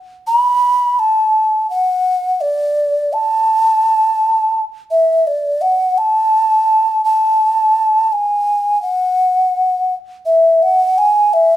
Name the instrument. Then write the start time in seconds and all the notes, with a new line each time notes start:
ocarina
0.27 B5
0.99 A5
1.70 F#5
2.41 D5
3.13 A5
4.91 E5
5.27 D5
5.61 F#5
5.98 A5
7.04 A5
8.13 G#5
8.82 F#5
10.25 E5
10.62 F#5
10.98 G#5
11.33 E5